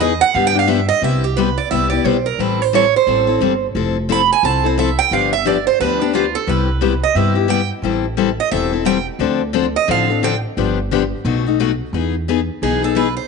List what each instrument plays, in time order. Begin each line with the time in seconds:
Already playing: upright bass E2
0.00 steel-string acoustic guitar E3 B3 D#4 G#4 D#5
0.21 steel-string acoustic guitar F#5
0.34 upright bass G2, steel-string acoustic guitar D3 F3 B3 D4 G4 F5
0.47 steel-string acoustic guitar G5
0.54 steel-string acoustic guitar B3 D4 G4
0.59 steel-string acoustic guitar F5
0.67 steel-string acoustic guitar D3 F3 B3 D4 G4 E5
0.89 steel-string acoustic guitar D#5
1.02 upright bass C2, steel-string acoustic guitar C3 G3 B3 E4 G4 E5
1.24 steel-string acoustic guitar G4
1.37 steel-string acoustic guitar C3 G3 B3 E4 G4 B4
1.58 steel-string acoustic guitar D5
1.71 upright bass C2, steel-string acoustic guitar C3 G3 B3 E4 G4 E5
1.90 steel-string acoustic guitar B3 E4 G4 D5
2.04 upright bass B1, steel-string acoustic guitar C3 G3 B3 E4 G4 C5
2.26 steel-string acoustic guitar A#4
2.39 upright bass A1, steel-string acoustic guitar E3 G3 C4 E4 A4 B4
2.62 steel-string acoustic guitar C5
2.73 steel-string acoustic guitar E3 G3 C4 E4 A4 C#5
2.96 steel-string acoustic guitar C5
3.07 upright bass A1, steel-string acoustic guitar E3 G3 C4 E4 A4
3.27 steel-string acoustic guitar C4 E4 A4
3.40 upright bass G1, steel-string acoustic guitar E3 G3 C4 E4 A4
3.75 upright bass F1, steel-string acoustic guitar F3 C4 E4 A4
4.09 steel-string acoustic guitar F3 C4 E4 A4 B5
4.33 steel-string acoustic guitar G#5
4.43 upright bass C2, steel-string acoustic guitar F3 C4 E4 A4 A5
4.64 steel-string acoustic guitar C4 E4 A4 C5
4.78 steel-string acoustic guitar F3 C4 E4 A4 E5
4.99 steel-string acoustic guitar G5
5.11 upright bass G1, steel-string acoustic guitar D3 F3 B3 D4 G4 F5
5.33 steel-string acoustic guitar E5
5.45 steel-string acoustic guitar D3 F3 B3 D4 G4 D5
5.67 steel-string acoustic guitar C5
5.80 upright bass D2, steel-string acoustic guitar D3 F3 B3 D4 G4 B4
6.00 steel-string acoustic guitar B3 D4 G4
6.13 steel-string acoustic guitar D3 F3 B3 D4 F4 G4
6.35 steel-string acoustic guitar A4
6.47 upright bass C2, steel-string acoustic guitar C3 G3 B3 E4 G4 B4
6.81 steel-string acoustic guitar C3 G3 B3 E4 G4
7.03 steel-string acoustic guitar D#5
7.15 upright bass G2, steel-string acoustic guitar C3 G3 B3 E4 G4 E5
7.35 steel-string acoustic guitar B3 E4 G4
7.48 steel-string acoustic guitar C3 G3 B3 E4 G4 G5
7.82 upright bass A1, steel-string acoustic guitar E3 G3 C4 E4 A4
8.17 steel-string acoustic guitar E3 G3 C4 E4 A4
8.40 steel-string acoustic guitar D#5
8.51 upright bass E1, steel-string acoustic guitar E3 G3 C4 E4 A4 E5
8.73 steel-string acoustic guitar C4 E4 A4
8.85 steel-string acoustic guitar E3 G3 C4 E4 A4 G5
9.19 upright bass D2, steel-string acoustic guitar D3 F3 C4 D4 A4
9.53 steel-string acoustic guitar D3 F3 C4 D4 A4
9.76 steel-string acoustic guitar D#5
9.88 upright bass A1, steel-string acoustic guitar D3 F3 C4 D4 A4 F5
10.10 steel-string acoustic guitar C4 D4 A4
10.23 steel-string acoustic guitar D3 F3 C4 D4 A4 G5
10.57 upright bass G1, steel-string acoustic guitar D3 F3 B3 D4 G4
10.91 steel-string acoustic guitar D3 F3 B3 D4 G4
11.25 upright bass B1, steel-string acoustic guitar B2 F#3 A3 D#4 F#4
11.46 steel-string acoustic guitar A3 D#4 F#4
11.60 steel-string acoustic guitar B2 F#3 A3 D#4 F#4
11.93 upright bass E2, steel-string acoustic guitar E3 B3 D#4 G#4
12.28 steel-string acoustic guitar E3 B3 D#4 G#4
12.62 upright bass B1, steel-string acoustic guitar E3 B3 D#4 G#4
12.83 steel-string acoustic guitar B3 D#4 G#4 A4
12.95 steel-string acoustic guitar E3 B3 D#4 G#4 B4
13.17 steel-string acoustic guitar C5